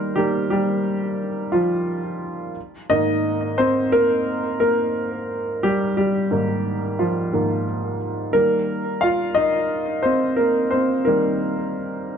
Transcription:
Already playing: D#3 G3 A#3 C4 A#4 C5
0.16 D#3 G3 A#3 G4
0.50 G3 G4
1.52 F3 F4
2.90 G#2 D#3 A#3 D#4 D#5
3.58 C4 C5
3.92 A#3 A#4
4.60 A#3 A#4
5.63 G3 G4
5.97 G3 G4
6.31 G#2 D#3 A#3
6.99 F3 F4
7.33 G#2 D#3 A#3
8.33 D#3 G3 A#3 A#4
9.01 F4 F5
9.34 D#4 D#5
10.03 C4 C5
10.37 A#3 A#4
10.71 C4 C5
11.05 D#3 G3 A#3 A#4

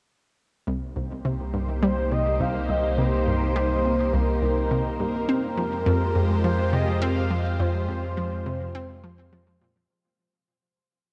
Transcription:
0.67 C2 A#3 D#4 G4 C5
0.96 C2
1.25 C3
1.54 G2
1.82 G3 C5
2.12 C3 D#5
2.40 C2 F5
2.69 C2 D#5
2.98 C3 C5
3.27 G2
3.56 G3
3.85 C3
4.13 C2 A#4
4.42 C2
4.71 C3
4.99 G2 A#4
5.29 F2 G#3 C4 F4 G4 C5
5.57 F3
5.86 F2
6.15 F2
6.44 F3 C5
6.73 C3 D#5
7.02 C4 F5
7.31 F3
7.59 F2 C5
7.89 F2
8.17 F3
8.46 C3
8.75 C4
9.04 F3
9.33 F3
9.61 A#2

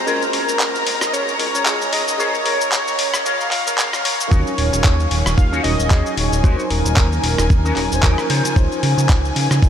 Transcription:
Already playing: A#5
0.06 G#3 C#4 F4 G#4 A#4, shaker
0.22 shaker
0.33 C#4 G#4 A#4, open hi-hat
0.49 shaker
0.59 clap, shaker
0.75 shaker
0.87 open hi-hat
1.01 cross-stick, shaker
1.07 D#5
1.13 C#4 G#4 A#4 C#5, shaker
1.28 shaker
1.39 G#3 C#4 F4 A#4 C#5, open hi-hat
1.54 C#4 G#4 C#5, shaker
1.66 G#3 C#4 F4 G#4, clap, shaker
1.81 shaker
1.93 D#5, open hi-hat
2.08 shaker
2.18 G#3 C#4 F4 G#4 A#4 C5 C#5, shaker
2.35 shaker
2.45 C#4 G#4 A#4, open hi-hat
2.61 shaker
2.72 clap, shaker
2.88 shaker
2.99 open hi-hat
3.14 cross-stick, shaker
3.25 C#4 G#4 A#4 F5, shaker
3.41 shaker
3.51 F5, clap, open hi-hat
3.66 G#3 C#4 F4 G#4 A#4, shaker
3.78 clap, shaker
3.93 cross-stick, shaker
4.05 C#5, open hi-hat
4.20 shaker
4.31 D#2 F#3 C#4 D#4 F#4 A#4 C#5 G#5, kick, shaker
4.47 shaker
4.58 D#1, open hi-hat
4.72 D#1, muted clean electric guitar stroke, shaker
4.84 D#2, muted clean electric guitar stroke, kick, clap, shaker
5.00 shaker
5.11 D#1, open hi-hat
5.26 D#1, cross-stick, shaker
5.37 D#2 F5, kick, shaker
5.52 C#4 D#4 F#4 C#5, shaker
5.63 D#1 F#3 C#4 D#4 A#4 D#5, open hi-hat
5.79 D#1, shaker
5.90 D#2 F#3 C#4 D#4 F#4 G#4, kick, clap, shaker
6.06 shaker
6.17 D#1 C#5, open hi-hat
6.32 D#1, shaker
6.43 D#2 F#3 C#4 D#4 F#4 A#4 C5, kick, shaker
6.59 shaker
6.70 D#1 A#4, open hi-hat
6.85 D#1, muted clean electric guitar stroke, shaker
6.96 D#2, kick, clap, shaker
7.12 shaker
7.24 D#1, open hi-hat
7.38 D#1, cross-stick, shaker
7.50 D#2, kick, shaker
7.65 C#4 D#4 F#4 A#4, shaker
7.76 D#1 F#3 C#4 D#4 A#4, clap, open hi-hat
7.92 D#1 C5, shaker
8.03 D#2 F3 C#4 D#4 F#4 A#4, kick, clap, shaker
8.13 G#4
8.18 A#4, cross-stick, shaker
8.29 C#3 C#4 D#4 F4 C5, open hi-hat
8.45 C#3, shaker
8.55 C#2 F3 C#4 D#4 C5, kick, shaker
8.72 shaker
8.83 C#3, open hi-hat
8.97 C#3, muted clean electric guitar stroke, shaker
9.09 C#2, muted clean electric guitar stroke, kick, clap, shaker
9.25 shaker
9.36 C#3, open hi-hat
9.51 C#3, cross-stick, shaker
9.62 C#2, kick, shaker

